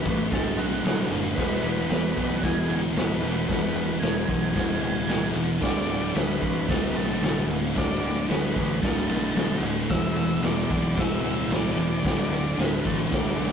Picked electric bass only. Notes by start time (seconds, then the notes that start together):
0.06 A1
0.32 D1
0.57 B1
0.83 B1
1.10 F#1
1.38 E1
1.62 E1
1.89 E1
2.17 B1
2.43 E1
2.69 D1
2.95 D1
3.22 E1
3.49 E1
3.75 E1
4.02 E1
4.29 B1
4.55 E1
4.81 D1
5.07 D1
5.34 E1
5.61 D1
5.87 D1
6.14 D1
6.42 A1
6.69 D1
6.94 B1
7.20 B1
7.47 D1
7.76 D1
8.01 D1
8.28 D1
8.56 A1
8.83 D1
9.09 B1
9.35 B1
9.61 D1
9.90 E1
10.16 E1
10.41 E1
10.70 B1
10.97 E1
11.22 D1
11.49 D1
11.76 E1
12.05 D1
12.29 D1
12.56 D1
12.85 A1
13.12 D1
13.36 B1